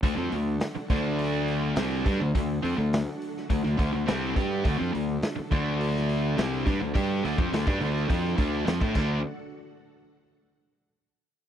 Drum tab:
CC |----------------|----------------|----------------|--------------x-|
HH |o-o-o-o-o-o-o-o-|o-o-o-o-o-o-o-o-|o-o-o-o-o-o-o-o-|o-o-o-o-o-o-o---|
SD |----o-------o---|----o--o-o--o---|----o----o--o---|----o--o-o--o---|
BD |o-----o-------o-|o-------o-o---o-|o-----o-------o-|o--o-o--o-o--oo-|

CC |----------------|
HH |----------------|
SD |----------------|
BD |----------------|